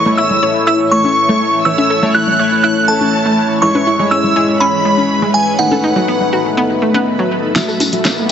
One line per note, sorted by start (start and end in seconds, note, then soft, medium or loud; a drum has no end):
0.00 3.58 E3 medium
0.00 3.58 C#4 medium
0.00 3.58 A4 medium
0.00 1.64 C#5 medium
0.00 0.19 C#6 loud
0.00 0.19 C#6 medium
0.06 0.40 A3 medium
0.06 0.11 A3 medium
0.06 0.40 E4 medium
0.06 0.40 C#5 medium
0.06 low conga medium
0.17 0.26 E4 medium
0.17 0.66 E6 medium
0.17 0.65 E6 loud
0.30 low conga medium
0.42 1.63 A3 medium
0.42 1.63 E4 medium
0.42 1.63 C#5 medium
0.42 0.48 C#5 medium
0.67 0.79 E4 loud
0.67 0.78 E6 loud
0.91 1.04 A3 medium
0.91 1.68 C#6 loud
1.04 high conga medium
1.29 1.40 A3 medium
1.29 low conga medium
1.65 1.71 E3 medium
1.65 2.00 A3 medium
1.65 2.00 E4 medium
1.65 2.00 C#5 medium
1.65 3.60 E5 medium
1.65 2.11 E6 loud
1.78 1.90 E5 medium
1.78 high conga medium
1.90 1.95 A4 medium
2.02 2.36 A3 medium
2.02 2.08 A3 medium
2.02 2.36 E4 medium
2.02 2.36 C#5 loud
2.02 low conga medium
2.14 2.23 E4 medium
2.14 2.60 F#6 loud
2.27 low conga medium
2.39 3.59 A3 medium
2.39 3.59 E4 medium
2.39 3.59 C#5 loud
2.39 2.44 C#5 medium
2.63 2.76 E4 loud
2.63 2.89 F#6 loud
2.88 3.00 A3 medium
2.88 3.64 A5 loud
3.01 high conga medium
3.26 3.37 A3 medium
3.62 5.57 E3 medium
3.62 3.67 E3 medium
3.62 3.96 G#3 medium
3.62 5.57 C#4 medium
3.62 3.96 E4 medium
3.62 5.57 G#4 medium
3.62 7.52 B4 medium
3.62 3.96 C#5 medium
3.62 4.13 C#6 loud
3.75 3.86 B4 medium
3.75 high conga medium
3.87 3.92 E4 medium
3.99 4.04 G#3 medium
3.99 4.33 G#3 medium
3.99 4.33 E4 medium
3.99 4.33 C#5 medium
3.99 low conga medium
4.11 4.20 C#4 medium
4.11 4.62 E6 medium
4.11 4.62 E6 loud
4.24 low conga medium
4.36 5.56 G#3 medium
4.36 5.56 E4 medium
4.36 4.41 G#4 medium
4.36 5.56 C#5 loud
4.60 4.72 C#4 loud
4.60 5.36 B5 medium
4.60 5.37 B5 loud
4.85 4.97 G#3 medium
4.98 high conga medium
5.22 5.34 G#3 medium
5.22 low conga medium
5.34 5.60 G#5 medium
5.59 5.64 D#3 medium
5.59 7.54 F#3 medium
5.59 5.93 A3 medium
5.59 7.54 D#4 medium
5.59 5.93 D#4 medium
5.59 7.54 A4 medium
5.59 5.93 B4 medium
5.59 7.02 F#5 medium
5.59 7.02 F#5 loud
5.71 5.83 A4 medium
5.71 high conga medium
5.84 5.89 D#4 medium
5.96 6.01 F#3 medium
5.96 6.30 A3 medium
5.96 6.30 D#4 medium
5.96 6.30 B4 medium
5.96 low conga medium
6.08 6.16 B3 medium
6.21 low conga medium
6.33 7.53 A3 medium
6.33 7.53 D#4 medium
6.33 6.38 F#4 medium
6.33 7.53 B4 loud
6.57 6.69 B3 loud
6.82 6.94 A3 medium
6.94 7.06 B3 loud
6.94 high conga medium
7.19 7.31 F#3 medium
7.55 7.61 E3 medium
7.55 8.32 F#3 medium
7.55 7.90 A3 medium
7.55 8.32 E4 medium
7.55 7.90 F#4 medium
7.55 8.32 A4 medium
7.55 8.32 C#5 medium
7.55 7.90 E5 medium
7.55 snare soft
7.55 closed hi-hat medium
7.55 tambourine medium
7.55 riser medium
7.68 7.80 A4 medium
7.68 tambourine soft
7.80 7.85 E4 medium
7.80 open hi-hat loud
7.80 tambourine medium
7.80 high conga medium
7.93 7.98 F#3 medium
7.93 8.27 A3 medium
7.93 8.27 F#4 medium
7.93 8.27 E5 medium
7.93 closed hi-hat medium
8.05 8.13 C#4 medium
8.05 snare soft
8.05 closed hi-hat medium
8.05 tambourine medium
8.18 tambourine soft